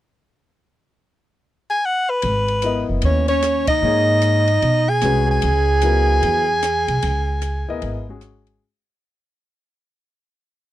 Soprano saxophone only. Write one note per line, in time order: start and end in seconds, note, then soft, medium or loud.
1.70 1.87 G#5 medium
1.85 2.11 F#5 medium
2.10 2.89 B4 medium
3.04 3.27 C#5 medium
3.28 3.65 C#5 medium
3.68 4.91 D#5 medium
4.89 5.28 G#5 medium
5.31 8.19 G#5 medium